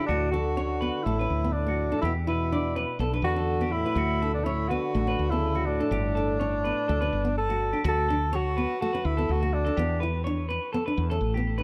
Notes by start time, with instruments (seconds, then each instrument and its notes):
0.06 fretless electric bass D2, trombone A2, alto saxophone D4, clean electric guitar F#4
0.10 nylon-string guitar A3
0.32 trombone D3, alto saxophone F#4, clean electric guitar A4, muted nylon-string guitar stroke
0.57 nylon-string guitar C#4, clean electric guitar C#5
0.81 nylon-string guitar B3, clean electric guitar B4
1.03 fretless electric bass A1, trombone A2, nylon-string guitar A3, alto saxophone E4, clean electric guitar A4
1.19 nylon-string guitar C#4, clean electric guitar B4
1.30 fretless electric bass D2
1.44 nylon-string guitar B3
1.52 trombone A2, alto saxophone D4
1.67 nylon-string guitar A3, clean electric guitar F#4
1.92 nylon-string guitar D4, clean electric guitar A4
2.01 fretless electric bass E2, trombone B2, nylon-string guitar B3, alto saxophone E4, clean electric guitar G4
2.27 trombone B2, nylon-string guitar E4, alto saxophone E4, clean electric guitar B4
2.52 nylon-string guitar D4, clean electric guitar D5
2.76 nylon-string guitar C#4, clean electric guitar B4
2.99 fretless electric bass B1, nylon-string guitar B3, clean electric guitar A4
3.14 nylon-string guitar D4, clean electric guitar B4
3.22 fretless electric bass E2, trombone D3, alto saxophone F#4
3.36 nylon-string guitar C#4, clean electric guitar A4
3.61 nylon-string guitar B3, clean electric guitar G4
3.71 trombone A2, alto saxophone E4
3.85 nylon-string guitar E4, clean electric guitar B4
3.95 fretless electric bass D2, nylon-string guitar A3, clean electric guitar F#4
4.22 nylon-string guitar D4, clean electric guitar A4
4.34 trombone B2, alto saxophone D4
4.44 trombone A2, nylon-string guitar C#4, alto saxophone E4, clean electric guitar C#5
4.68 trombone D3, nylon-string guitar B3, alto saxophone F#4, clean electric guitar B4
4.94 fretless electric bass A1, nylon-string guitar A3, muted clean electric guitar stroke
5.07 nylon-string guitar C#4, clean electric guitar B4
5.19 fretless electric bass D2
5.29 trombone C#3, nylon-string guitar B3, alto saxophone E4, clean electric guitar A4
5.55 nylon-string guitar A3, clean electric guitar F#4
5.66 trombone A2, alto saxophone D4
5.80 nylon-string guitar D4, clean electric guitar A4
5.91 fretless electric bass G1, clean electric guitar G4, muted nylon-string guitar stroke
6.15 nylon-string guitar D4, clean electric guitar A4
6.40 nylon-string guitar C#4, clean electric guitar C#5
6.64 nylon-string guitar B3, clean electric guitar B4
6.88 fretless electric bass D2, nylon-string guitar A3, clean electric guitar A4
7.01 nylon-string guitar C#4, clean electric guitar B4
7.13 fretless electric bass G1
7.25 nylon-string guitar B3
7.38 alto saxophone A4
7.49 nylon-string guitar A3, clean electric guitar F#4
7.73 nylon-string guitar D4, clean electric guitar G4
7.84 fretless electric bass D2, clean electric guitar F#4, alto saxophone A4, muted nylon-string guitar stroke
8.08 nylon-string guitar D4, clean electric guitar A4
8.33 alto saxophone F#4, clean electric guitar C#5, muted nylon-string guitar stroke
8.57 nylon-string guitar B3, clean electric guitar B4
8.81 nylon-string guitar A3, alto saxophone F#4, clean electric guitar A4
8.93 nylon-string guitar C#4, clean electric guitar B4
9.05 fretless electric bass D2, alto saxophone E4
9.17 nylon-string guitar B3, clean electric guitar A4
9.29 fretless electric bass D2, alto saxophone F#4
9.41 nylon-string guitar A3, clean electric guitar F#4
9.53 alto saxophone D4
9.65 nylon-string guitar D4, clean electric guitar A4
9.77 fretless electric bass E2, nylon-string guitar B3, clean electric guitar G4
10.00 nylon-string guitar E4, clean electric guitar B4
10.24 nylon-string guitar D4, clean electric guitar C#5
10.49 nylon-string guitar C#4, clean electric guitar B4
10.73 nylon-string guitar B3, clean electric guitar A4
10.86 nylon-string guitar D4, clean electric guitar B4
10.97 fretless electric bass E2
11.10 nylon-string guitar C#4, clean electric guitar A4
11.21 fretless electric bass A1
11.34 nylon-string guitar B3, clean electric guitar G4
11.58 nylon-string guitar D4, clean electric guitar B4